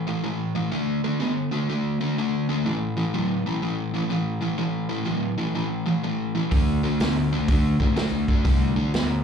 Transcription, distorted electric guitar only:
0.07 A2 E3
0.23 A2 E3
0.55 A2 E3
0.71 D3 A3
1.04 D3 A3
1.20 D3 B3
1.52 D3 A3
1.70 D3 A3
2.01 D3 A3
2.18 D3 A3
2.49 D3 A3
2.66 A2 E3
2.97 A2 E3
3.14 A2 F#3
3.46 A2 E3
3.62 A2 E3
3.94 A2 E3
4.10 A2 E3
4.41 A2 E3
4.58 A2 E3
4.89 A2 E3
5.06 A2 F#3
5.38 A2 E3
5.55 A2 E3
5.86 A2 E3
6.03 A2 E3
6.35 A2 E3
6.51 D3 A3
6.83 D3 A3
7.01 D3 B3
7.33 D3 A3
7.49 D3 A3
7.80 D3 A3
7.96 D3 A3
8.29 D3 A3
8.45 D3 A3
8.76 D3 A3
8.94 D3 B3

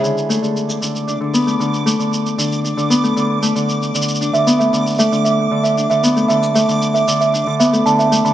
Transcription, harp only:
Already playing: B3 E4 G#4
0.03 D3
0.29 A3
0.42 D3
0.81 D3
1.07 D4
1.20 D3
1.34 B3
1.47 A3
1.60 D3
1.86 A3
1.99 D3
2.38 D3
2.64 D4
2.77 D3
2.90 B3
3.03 A3
3.16 D3
3.42 A3
3.55 D3
3.94 D3
4.21 D4
4.34 D3
4.47 B3
4.60 A3
4.73 D3
4.99 A3
5.12 D3
5.51 D3
5.77 D4
5.90 D3
6.03 B3
6.16 A3
6.29 D3
6.55 A3
6.68 D3
7.07 D3
7.33 D4
7.47 D3
7.60 B3
7.73 A3
7.86 D3
8.11 A3
8.25 D3

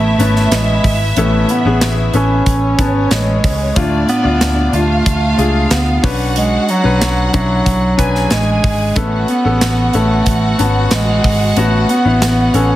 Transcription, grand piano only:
Already playing: A2 E3 B3 C#4 G#4 A4
0.19 B3 C#4 A5
1.16 A2 E3 B3 C#4 A4
1.65 B3 C#4 G#4
2.13 B3 C#4 A4
2.79 B3 C#4 A5
3.75 A2 D4 E4 F4
4.23 D4 E4 F4
4.72 D4 F4
5.37 D4 F4 G#4
6.03 C#4 D4 B4
6.83 C#4 D4 B4
7.33 C#4 D4 E4
7.97 C#4 D4 B4
8.96 B3 C#4 A4
9.44 B3 C#4 A4
9.93 B3 C#4 A4
10.59 B3 C#4 A5
11.56 B3 C#4 F#4
12.05 B3 C#4 E4
12.54 B3 C#4 A4

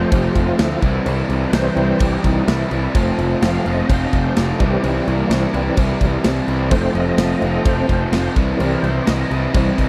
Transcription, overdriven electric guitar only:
Already playing: F2 C3 F3 A3 C4 F4
0.12 F2 C3 F3 A3 C4 F4
0.58 F2 C3 F3 A3 C4 F4
0.81 C3 E3 G3 C4 E4
1.05 C3 E3 G3 C4 E4
1.53 C3 E3 G3 C4 E4
1.77 C3 E3 G3 C4 E4
2.00 C3 E3 G3 C4 E4
2.47 C3 E3 G3 C4 E4
2.70 C3 E3 G3 C4 E4
2.94 F2 C3 F3 A3 C4 F4
3.41 F2 C3 F3 A3 C4 F4
3.66 F2 C3 F3 A3 C4 F4
3.89 F2 C3 F3 A3 C4 F4
4.36 F2 C3 F3 A3 C4 F4
4.59 C3 E3 G3 C4 E4
4.83 C3 E3 G3 C4 E4
5.29 C3 E3 G3 C4 E4
5.53 C3 E3 G3 C4 E4
5.76 C3 E3 G3 C4 E4
6.24 C3 E3 G3 C4 E4
6.47 C3 E3 G3 C4 E4
6.71 F2 C3 F3 A3 C4 F4
7.17 F2 C3 F3 A3 C4 F4
7.41 F2 C3 F3 A3 C4 F4
7.64 F2 C3 F3 A3 C4 F4
8.12 F2 C3 F3 A3 C4 F4
8.35 C3 E3 G3 C4 E4
8.58 C3 E3 G3 C4 E4
9.05 C3 E3 G3 C4 E4
9.30 C3 E3 G3 C4 E4
9.54 C3 E3 G3 C4 E4

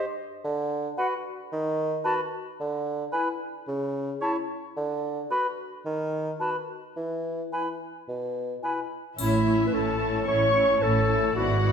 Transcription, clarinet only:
0.98 F#4
2.05 F#4
3.13 E4
4.22 E4
5.31 F#4
6.40 F#4
7.52 E4
8.63 E4
9.18 E4
9.67 B4
9.74 A4
10.27 C#5
10.82 A4
11.36 F#4

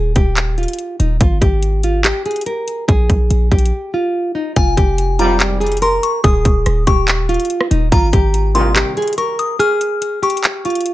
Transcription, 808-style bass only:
Already playing: D#1
0.16 D#1
1.00 D#1
1.21 G#1
1.42 G#1
2.89 A#1
3.10 A#1
3.30 A#1
3.52 A#1
4.56 F1
4.77 F1
6.24 D#1
6.45 D#1
6.66 D#1
6.87 D#1
7.71 D#1
7.92 G#1
8.13 G#1

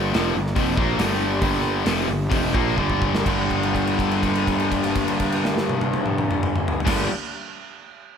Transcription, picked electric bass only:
Already playing: G1
0.14 F1
0.35 G1
0.56 F1
0.77 A#1
0.99 G1
1.42 G1
1.86 F1
2.09 G1
2.31 F1
2.54 A#1
2.78 G1
3.26 G1
6.87 G1

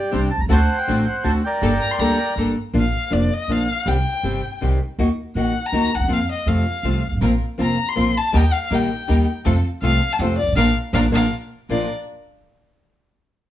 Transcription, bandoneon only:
Already playing: G4
0.13 C5
0.31 A5
0.40 A#5
0.50 C5 F#5 A5
0.78 C5 G5
1.06 F#5
1.24 A5
1.45 A#4 D5 G5

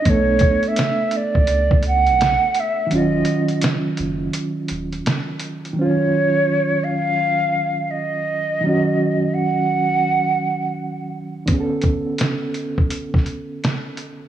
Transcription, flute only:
Already playing: D#5
0.09 C#5
0.68 E5
1.16 D5
1.88 F#5
2.60 E5
2.95 D#5
5.79 C#5
6.84 F5
7.91 D#5
9.34 F#5

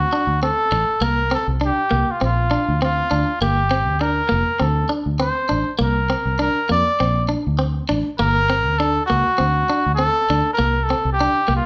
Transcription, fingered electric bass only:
0.27 D2
0.72 A1
1.01 C2
1.48 C2
1.92 C2
2.22 A#1
2.68 D2
3.12 D2
3.41 G1
3.88 D2
4.32 F1
4.61 D2
5.06 D2
5.51 A1
5.81 C2
6.25 C2
6.70 F2
7.01 A#1
7.47 D2
7.90 A1
8.20 G1
8.66 D2
9.11 C#2
9.40 D2
9.86 D2
10.30 D2
10.60 C2
11.05 C2
11.49 C2

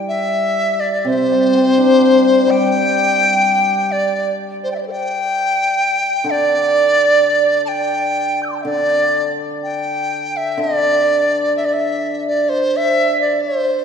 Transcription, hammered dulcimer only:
Already playing: G3
1.05 C3
1.31 G3
1.54 C4
1.77 D4
2.01 G4
2.47 G3
6.24 D3
8.65 D3
10.57 D3

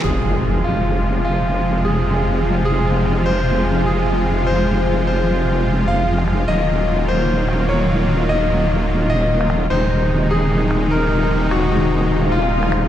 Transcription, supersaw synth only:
0.04 C3 F3 G#3 F4
6.48 D#3 F#3 A#3
9.70 C3 D#3 G#3 D#4

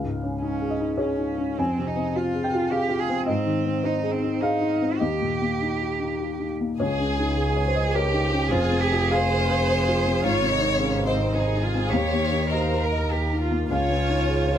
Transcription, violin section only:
6.80 G#4
7.66 G#4
7.95 G4
8.52 G#4
9.13 C5
10.23 C#5
11.07 C5
11.35 G#4
11.94 C#5
12.52 A#4
13.72 C#5

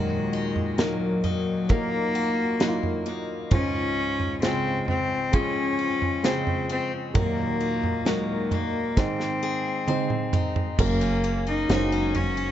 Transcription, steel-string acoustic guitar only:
Already playing: D#3 F#4
0.33 D#4
0.78 A#3
1.24 D#4
1.69 A#3
2.15 F#4
2.60 A#3
3.06 D#4
3.51 C#3 F4
4.42 G#3
5.33 F3
5.79 F4
6.24 G#3
6.69 C4
7.15 D#3 F#4
7.60 D#4
8.06 A#3
8.52 D#4
8.97 G#2
9.43 G#4
9.88 C4
10.33 D#4
10.79 F#2
11.01 C#4
11.24 A#3
11.47 C#4
11.69 F#4
11.92 C#4
12.15 F#4
12.37 C#4

